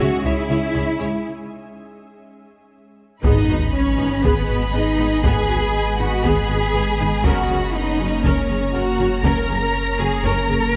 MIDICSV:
0, 0, Header, 1, 10, 480
1, 0, Start_track
1, 0, Key_signature, 5, "minor"
1, 0, Tempo, 500000
1, 1191, Time_signature, 4, 2, 24, 8
1, 10333, End_track
2, 0, Start_track
2, 0, Title_t, "Violin section"
2, 0, Program_c, 0, 48
2, 3104, Note_on_c, 0, 83, 58
2, 7869, Note_off_c, 0, 83, 0
2, 7913, Note_on_c, 0, 82, 50
2, 10333, Note_off_c, 0, 82, 0
2, 10333, End_track
3, 0, Start_track
3, 0, Title_t, "Violin section"
3, 0, Program_c, 1, 48
3, 239, Note_on_c, 1, 73, 46
3, 243, Note_on_c, 1, 76, 51
3, 315, Note_off_c, 1, 73, 0
3, 320, Note_off_c, 1, 76, 0
3, 477, Note_on_c, 1, 76, 48
3, 482, Note_on_c, 1, 73, 42
3, 554, Note_off_c, 1, 76, 0
3, 558, Note_off_c, 1, 73, 0
3, 703, Note_on_c, 1, 76, 46
3, 706, Note_on_c, 1, 73, 46
3, 780, Note_off_c, 1, 76, 0
3, 783, Note_off_c, 1, 73, 0
3, 953, Note_on_c, 1, 76, 43
3, 954, Note_on_c, 1, 73, 38
3, 1030, Note_off_c, 1, 76, 0
3, 1031, Note_off_c, 1, 73, 0
3, 3113, Note_on_c, 1, 75, 65
3, 3559, Note_off_c, 1, 75, 0
3, 3598, Note_on_c, 1, 73, 60
3, 4071, Note_on_c, 1, 71, 59
3, 4075, Note_off_c, 1, 73, 0
3, 4541, Note_off_c, 1, 71, 0
3, 4544, Note_on_c, 1, 75, 58
3, 5028, Note_off_c, 1, 75, 0
3, 5033, Note_on_c, 1, 80, 68
3, 5752, Note_off_c, 1, 80, 0
3, 5752, Note_on_c, 1, 78, 57
3, 5986, Note_on_c, 1, 80, 68
3, 5992, Note_off_c, 1, 78, 0
3, 6949, Note_off_c, 1, 80, 0
3, 6955, Note_on_c, 1, 78, 59
3, 7423, Note_off_c, 1, 78, 0
3, 7431, Note_on_c, 1, 75, 57
3, 7902, Note_off_c, 1, 75, 0
3, 7907, Note_on_c, 1, 73, 52
3, 8389, Note_off_c, 1, 73, 0
3, 8392, Note_on_c, 1, 78, 59
3, 8870, Note_on_c, 1, 82, 71
3, 8872, Note_off_c, 1, 78, 0
3, 9577, Note_off_c, 1, 82, 0
3, 9591, Note_on_c, 1, 80, 59
3, 9831, Note_off_c, 1, 80, 0
3, 9838, Note_on_c, 1, 82, 69
3, 10333, Note_off_c, 1, 82, 0
3, 10333, End_track
4, 0, Start_track
4, 0, Title_t, "Cello section"
4, 0, Program_c, 2, 48
4, 0, Note_on_c, 2, 66, 76
4, 232, Note_off_c, 2, 66, 0
4, 232, Note_on_c, 2, 64, 72
4, 1192, Note_off_c, 2, 64, 0
4, 3112, Note_on_c, 2, 63, 74
4, 3558, Note_off_c, 2, 63, 0
4, 3595, Note_on_c, 2, 61, 69
4, 4073, Note_off_c, 2, 61, 0
4, 4077, Note_on_c, 2, 59, 68
4, 4553, Note_on_c, 2, 63, 61
4, 4554, Note_off_c, 2, 59, 0
4, 5032, Note_off_c, 2, 63, 0
4, 5034, Note_on_c, 2, 68, 76
4, 5739, Note_off_c, 2, 68, 0
4, 5750, Note_on_c, 2, 66, 66
4, 5986, Note_off_c, 2, 66, 0
4, 5992, Note_on_c, 2, 68, 75
4, 6952, Note_off_c, 2, 68, 0
4, 6953, Note_on_c, 2, 66, 69
4, 7432, Note_off_c, 2, 66, 0
4, 7432, Note_on_c, 2, 63, 67
4, 7911, Note_on_c, 2, 61, 60
4, 7912, Note_off_c, 2, 63, 0
4, 8391, Note_off_c, 2, 61, 0
4, 8394, Note_on_c, 2, 66, 68
4, 8863, Note_off_c, 2, 66, 0
4, 8874, Note_on_c, 2, 70, 70
4, 9578, Note_off_c, 2, 70, 0
4, 9595, Note_on_c, 2, 68, 70
4, 9833, Note_off_c, 2, 68, 0
4, 9834, Note_on_c, 2, 70, 79
4, 10333, Note_off_c, 2, 70, 0
4, 10333, End_track
5, 0, Start_track
5, 0, Title_t, "Viola section"
5, 0, Program_c, 3, 48
5, 237, Note_on_c, 3, 68, 47
5, 314, Note_off_c, 3, 68, 0
5, 475, Note_on_c, 3, 68, 43
5, 476, Note_off_c, 3, 68, 0
5, 476, Note_on_c, 3, 68, 39
5, 553, Note_off_c, 3, 68, 0
5, 714, Note_on_c, 3, 68, 45
5, 716, Note_off_c, 3, 68, 0
5, 716, Note_on_c, 3, 68, 44
5, 793, Note_off_c, 3, 68, 0
5, 953, Note_on_c, 3, 68, 42
5, 954, Note_off_c, 3, 68, 0
5, 954, Note_on_c, 3, 68, 44
5, 1030, Note_off_c, 3, 68, 0
5, 3110, Note_on_c, 3, 59, 56
5, 3112, Note_on_c, 3, 68, 57
5, 3334, Note_off_c, 3, 59, 0
5, 3335, Note_off_c, 3, 68, 0
5, 3350, Note_on_c, 3, 66, 37
5, 3351, Note_on_c, 3, 59, 38
5, 3427, Note_off_c, 3, 66, 0
5, 3428, Note_off_c, 3, 59, 0
5, 3831, Note_on_c, 3, 59, 41
5, 3831, Note_on_c, 3, 63, 45
5, 3908, Note_off_c, 3, 59, 0
5, 3908, Note_off_c, 3, 63, 0
5, 4067, Note_on_c, 3, 68, 61
5, 4068, Note_on_c, 3, 59, 52
5, 4292, Note_off_c, 3, 68, 0
5, 4293, Note_off_c, 3, 59, 0
5, 4308, Note_on_c, 3, 59, 36
5, 4309, Note_on_c, 3, 66, 39
5, 4385, Note_off_c, 3, 59, 0
5, 4385, Note_off_c, 3, 66, 0
5, 4550, Note_on_c, 3, 59, 50
5, 4550, Note_on_c, 3, 68, 39
5, 4626, Note_off_c, 3, 68, 0
5, 4627, Note_off_c, 3, 59, 0
5, 4786, Note_on_c, 3, 59, 49
5, 4787, Note_on_c, 3, 63, 44
5, 4863, Note_off_c, 3, 59, 0
5, 4864, Note_off_c, 3, 63, 0
5, 5029, Note_on_c, 3, 59, 56
5, 5029, Note_on_c, 3, 68, 64
5, 5253, Note_off_c, 3, 59, 0
5, 5253, Note_off_c, 3, 68, 0
5, 5270, Note_on_c, 3, 59, 41
5, 5272, Note_on_c, 3, 66, 43
5, 5347, Note_off_c, 3, 59, 0
5, 5349, Note_off_c, 3, 66, 0
5, 5753, Note_on_c, 3, 59, 43
5, 5753, Note_on_c, 3, 63, 40
5, 5830, Note_off_c, 3, 59, 0
5, 5830, Note_off_c, 3, 63, 0
5, 5991, Note_on_c, 3, 68, 60
5, 5992, Note_on_c, 3, 59, 58
5, 6215, Note_off_c, 3, 59, 0
5, 6215, Note_off_c, 3, 68, 0
5, 6229, Note_on_c, 3, 59, 39
5, 6229, Note_on_c, 3, 66, 37
5, 6306, Note_off_c, 3, 59, 0
5, 6306, Note_off_c, 3, 66, 0
5, 6472, Note_on_c, 3, 59, 44
5, 6473, Note_on_c, 3, 68, 40
5, 6549, Note_off_c, 3, 59, 0
5, 6550, Note_off_c, 3, 68, 0
5, 6714, Note_on_c, 3, 59, 46
5, 6716, Note_on_c, 3, 63, 42
5, 6791, Note_off_c, 3, 59, 0
5, 6792, Note_off_c, 3, 63, 0
5, 6952, Note_on_c, 3, 70, 55
5, 6953, Note_on_c, 3, 61, 61
5, 7175, Note_off_c, 3, 61, 0
5, 7175, Note_off_c, 3, 70, 0
5, 7193, Note_on_c, 3, 61, 41
5, 7193, Note_on_c, 3, 68, 35
5, 7269, Note_off_c, 3, 61, 0
5, 7270, Note_off_c, 3, 68, 0
5, 7671, Note_on_c, 3, 61, 40
5, 7671, Note_on_c, 3, 66, 41
5, 7748, Note_off_c, 3, 61, 0
5, 7748, Note_off_c, 3, 66, 0
5, 7913, Note_on_c, 3, 61, 49
5, 7915, Note_on_c, 3, 70, 52
5, 8136, Note_off_c, 3, 61, 0
5, 8137, Note_off_c, 3, 70, 0
5, 8157, Note_on_c, 3, 68, 32
5, 8158, Note_on_c, 3, 61, 42
5, 8234, Note_off_c, 3, 61, 0
5, 8234, Note_off_c, 3, 68, 0
5, 8395, Note_on_c, 3, 70, 47
5, 8396, Note_on_c, 3, 61, 46
5, 8472, Note_off_c, 3, 70, 0
5, 8473, Note_off_c, 3, 61, 0
5, 8635, Note_on_c, 3, 61, 48
5, 8636, Note_on_c, 3, 66, 47
5, 8712, Note_off_c, 3, 61, 0
5, 8712, Note_off_c, 3, 66, 0
5, 8872, Note_on_c, 3, 61, 54
5, 8874, Note_on_c, 3, 70, 64
5, 9095, Note_off_c, 3, 61, 0
5, 9096, Note_off_c, 3, 70, 0
5, 9110, Note_on_c, 3, 61, 38
5, 9111, Note_on_c, 3, 68, 41
5, 9187, Note_off_c, 3, 61, 0
5, 9188, Note_off_c, 3, 68, 0
5, 9590, Note_on_c, 3, 61, 42
5, 9590, Note_on_c, 3, 66, 41
5, 9667, Note_off_c, 3, 61, 0
5, 9667, Note_off_c, 3, 66, 0
5, 9834, Note_on_c, 3, 61, 54
5, 9834, Note_on_c, 3, 70, 55
5, 10056, Note_off_c, 3, 61, 0
5, 10056, Note_off_c, 3, 70, 0
5, 10075, Note_on_c, 3, 68, 41
5, 10076, Note_on_c, 3, 61, 35
5, 10152, Note_off_c, 3, 68, 0
5, 10153, Note_off_c, 3, 61, 0
5, 10333, End_track
6, 0, Start_track
6, 0, Title_t, "Ambient pad"
6, 0, Program_c, 4, 92
6, 0, Note_on_c, 4, 56, 71
6, 0, Note_on_c, 4, 61, 77
6, 0, Note_on_c, 4, 68, 72
6, 0, Note_on_c, 4, 76, 70
6, 1155, Note_off_c, 4, 56, 0
6, 1155, Note_off_c, 4, 68, 0
6, 1194, Note_off_c, 4, 76, 0
6, 1195, Note_off_c, 4, 61, 0
6, 3117, Note_on_c, 4, 59, 72
6, 3121, Note_on_c, 4, 68, 70
6, 3121, Note_on_c, 4, 75, 74
6, 3122, Note_on_c, 4, 56, 74
6, 6916, Note_off_c, 4, 59, 0
6, 6918, Note_off_c, 4, 68, 0
6, 6918, Note_off_c, 4, 75, 0
6, 6919, Note_off_c, 4, 56, 0
6, 6958, Note_on_c, 4, 61, 63
6, 6960, Note_on_c, 4, 73, 65
6, 6962, Note_on_c, 4, 58, 64
6, 10333, Note_off_c, 4, 58, 0
6, 10333, Note_off_c, 4, 61, 0
6, 10333, Note_off_c, 4, 73, 0
6, 10333, End_track
7, 0, Start_track
7, 0, Title_t, "Double bass section"
7, 0, Program_c, 5, 48
7, 237, Note_on_c, 5, 37, 58
7, 314, Note_off_c, 5, 37, 0
7, 475, Note_on_c, 5, 37, 51
7, 552, Note_off_c, 5, 37, 0
7, 717, Note_on_c, 5, 37, 53
7, 794, Note_off_c, 5, 37, 0
7, 953, Note_on_c, 5, 37, 47
7, 1030, Note_off_c, 5, 37, 0
7, 3111, Note_on_c, 5, 32, 63
7, 3187, Note_off_c, 5, 32, 0
7, 3351, Note_on_c, 5, 32, 45
7, 3428, Note_off_c, 5, 32, 0
7, 3830, Note_on_c, 5, 32, 45
7, 3906, Note_off_c, 5, 32, 0
7, 4069, Note_on_c, 5, 32, 57
7, 4146, Note_off_c, 5, 32, 0
7, 4306, Note_on_c, 5, 32, 42
7, 4383, Note_off_c, 5, 32, 0
7, 4545, Note_on_c, 5, 32, 45
7, 4622, Note_off_c, 5, 32, 0
7, 4784, Note_on_c, 5, 32, 44
7, 4861, Note_off_c, 5, 32, 0
7, 5024, Note_on_c, 5, 32, 62
7, 5101, Note_off_c, 5, 32, 0
7, 5265, Note_on_c, 5, 32, 45
7, 5341, Note_off_c, 5, 32, 0
7, 5750, Note_on_c, 5, 32, 46
7, 5827, Note_off_c, 5, 32, 0
7, 5987, Note_on_c, 5, 32, 63
7, 6064, Note_off_c, 5, 32, 0
7, 6233, Note_on_c, 5, 32, 38
7, 6310, Note_off_c, 5, 32, 0
7, 6472, Note_on_c, 5, 32, 43
7, 6549, Note_off_c, 5, 32, 0
7, 6714, Note_on_c, 5, 32, 43
7, 6791, Note_off_c, 5, 32, 0
7, 6951, Note_on_c, 5, 30, 56
7, 7028, Note_off_c, 5, 30, 0
7, 7196, Note_on_c, 5, 30, 38
7, 7273, Note_off_c, 5, 30, 0
7, 7676, Note_on_c, 5, 30, 41
7, 7753, Note_off_c, 5, 30, 0
7, 7915, Note_on_c, 5, 30, 61
7, 7992, Note_off_c, 5, 30, 0
7, 8153, Note_on_c, 5, 30, 40
7, 8230, Note_off_c, 5, 30, 0
7, 8395, Note_on_c, 5, 30, 40
7, 8472, Note_off_c, 5, 30, 0
7, 8634, Note_on_c, 5, 30, 40
7, 8711, Note_off_c, 5, 30, 0
7, 8873, Note_on_c, 5, 30, 59
7, 8950, Note_off_c, 5, 30, 0
7, 9116, Note_on_c, 5, 30, 43
7, 9192, Note_off_c, 5, 30, 0
7, 9597, Note_on_c, 5, 30, 46
7, 9673, Note_off_c, 5, 30, 0
7, 9835, Note_on_c, 5, 30, 58
7, 9912, Note_off_c, 5, 30, 0
7, 10076, Note_on_c, 5, 30, 42
7, 10152, Note_off_c, 5, 30, 0
7, 10333, End_track
8, 0, Start_track
8, 0, Title_t, "Sub bass"
8, 0, Program_c, 6, 38
8, 3111, Note_on_c, 6, 32, 61
8, 6952, Note_on_c, 6, 30, 63
8, 6967, Note_off_c, 6, 32, 0
8, 10333, Note_off_c, 6, 30, 0
8, 10333, End_track
9, 0, Start_track
9, 0, Title_t, "Sub drop"
9, 0, Program_c, 7, 103
9, 3111, Note_on_c, 7, 60, 60
9, 5031, Note_off_c, 7, 60, 0
9, 10333, End_track
10, 0, Start_track
10, 0, Title_t, "Taiko and cinematic ensemble drums"
10, 3113, Note_on_c, 9, 41, 90
10, 3209, Note_off_c, 9, 41, 0
10, 4073, Note_on_c, 9, 41, 72
10, 4169, Note_off_c, 9, 41, 0
10, 5029, Note_on_c, 9, 41, 87
10, 5125, Note_off_c, 9, 41, 0
10, 5990, Note_on_c, 9, 41, 65
10, 6086, Note_off_c, 9, 41, 0
10, 6950, Note_on_c, 9, 41, 87
10, 7046, Note_off_c, 9, 41, 0
10, 7912, Note_on_c, 9, 41, 65
10, 8008, Note_off_c, 9, 41, 0
10, 8870, Note_on_c, 9, 41, 84
10, 8966, Note_off_c, 9, 41, 0
10, 9831, Note_on_c, 9, 41, 62
10, 9927, Note_off_c, 9, 41, 0
10, 10333, End_track
0, 0, End_of_file